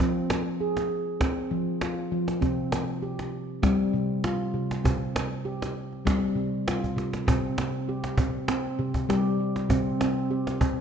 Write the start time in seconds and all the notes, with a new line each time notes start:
0.00 F3 C4, cajon bass
0.30 cajon slap
0.61 G#4
0.77 cajon slap
1.20 C4, cajon bass, cajon slap
1.51 F3, cajon slap
1.81 F4, cajon slap
2.12 F3
2.28 cajon slap
2.41 C3 C4, cajon bass, cajon slap
2.72 cajon slap
3.02 G4
3.19 cajon slap
3.62 G3 C4, cajon bass, cajon slap
3.93 C3, cajon slap
4.24 F4, cajon slap
4.54 C3
4.71 cajon slap
4.84 C3 C4, cajon bass
5.16 cajon slap
5.45 G4
5.62 cajon slap
5.93 cajon slap
6.05 G3 C4, cajon bass, cajon slap
6.35 C3, cajon slap
6.67 F4, cajon slap
6.84 cajon bass
6.96 C3, cajon slap
7.13 cajon slap
7.27 C3 C4, cajon bass
7.58 C4, cajon slap
7.89 G4
8.04 cajon slap
8.18 C4, cajon bass
8.35 cajon slap
8.48 C4, cajon slap
8.79 C3, cajon slap
8.94 cajon bass
9.09 G3 G4, cajon slap
9.56 cajon slap
9.69 C3 C4, cajon bass
10.01 C4, cajon slap
10.31 G4
10.47 cajon slap
10.61 C4, cajon bass
10.78 cajon slap